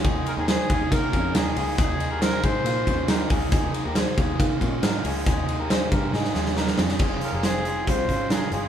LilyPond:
<<
  \new Staff \with { instrumentName = "Trumpet" } { \time 4/4 \key ees \mixolydian \tempo 4 = 138 r8 bes'16 aes'16 aes'4 bes'4 aes'4 | aes'4 bes'8 c''2 r8 | r1 | r1 |
r8 bes'16 aes'16 aes'4 c''4 aes'8 aes'8 | }
  \new Staff \with { instrumentName = "Clean electric guitar" } { \time 4/4 \key ees \mixolydian <ees' aes'>8. <g' bes'>16 <aes' c''>8 <f' aes'>8 <bes f'>8 <des' f'>8 <ees' bes'>8 <f' aes'>8 | <ees' aes'>8. <g' bes'>16 <aes' c''>8 <f' aes'>8 <bes f'>8 <des' f'>8 <ees' bes'>8 <f' aes'>8 | <ees' aes'>8. <g' bes'>16 <aes' c''>8 <f' aes'>8 <bes f'>8 <des' f'>8 <ees' bes'>8 <f' aes'>8 | <ees' aes'>8. <g' bes'>16 <aes' c''>8 <g' bes'>8 <ees' aes'>8 <f' aes'>8 <ees' bes'>8 <f' aes'>8 |
<f' aes'>8. <g' bes'>16 <aes' c''>8 <f' aes'>8 <c' f'>8 <des' f'>8 <f' bes'>8 <f' aes'>8 | }
  \new Staff \with { instrumentName = "Overdriven electric guitar" } { \time 4/4 \key ees \mixolydian <ees bes ees' aes'>8 <bes ees' aes'>8 <ees bes ees' aes'>8 <bes ees' aes'>8 <ees bes ees' aes'>8 <bes ees' aes'>8 <ees bes ees' aes'>8 <bes ees' aes'>8 | <ees bes ees' aes'>8 <bes ees' aes'>8 <ees bes ees' aes'>8 <bes ees' aes'>8 <ees bes ees' aes'>8 <bes ees' aes'>8 <ees bes ees' aes'>8 <bes ees' aes'>8 | <ees bes ees' aes'>8 <bes ees' aes'>8 <ees bes ees' aes'>8 <bes ees' aes'>8 <ees bes ees' aes'>8 <bes ees' aes'>8 <ees bes ees' aes'>8 <bes ees' aes'>8 | <ees bes ees' aes'>8 <bes ees' aes'>8 <ees bes ees' aes'>8 <bes ees' aes'>8 <ees bes ees' aes'>8 <bes ees' aes'>8 <ees bes ees' aes'>8 <f aes c' aes'>8 |
<f, c f aes c' f'>8 <f aes c' f'>8 <f, c f aes c' f'>8 <f aes c' f'>8 <f aes c' f'>8 <f aes c' f'>8 <f, c f aes c' f'>8 <f aes c' f'>8 | }
  \new Staff \with { instrumentName = "Picked electric bass" } { \clef bass \time 4/4 \key ees \mixolydian ees,8 r16 ees,8 r16 ees,8 ees8 f,8 ees,8 des,8 | ees,4. aes,8 bes,8 ees,4 des,8 | ees,8 r16 ees,8 r16 ees,8 ees8 bes,8 aes,8 des,8 | ees,4. g,8 aes,8 ees,4 f,8 |
f,,8 r16 f,,4~ f,,16 c,8 aes,,4 g,,8 | }
  \new DrumStaff \with { instrumentName = "Drums" } \drummode { \time 4/4 <bd cymr>8 cymr8 <cymr sn>8 <bd cymr>8 <bd cymr>8 <bd cymr>8 <cymr sn>8 <hho cymr>8 | <hhp bd cymr>8 cymr8 <cymr sn>8 <bd cymr>8 cymr8 <bd cymr>8 <cymr sn>8 <hho bd cymr>8 | <hhp bd cymr>8 cymr8 <cymr sn>8 <bd cymr>8 <bd cymr>8 <bd cymr>8 <cymr sn>8 <hho cymr>8 | <hhp bd cymr>8 cymr8 <cymr sn>8 <bd cymr>8 sn16 sn16 sn16 sn16 sn16 sn16 sn16 sn16 |
<cymc bd>8 hh8 <hh sn>8 hh8 <hh bd>8 <hh bd>8 <hh sn>8 hh8 | }
>>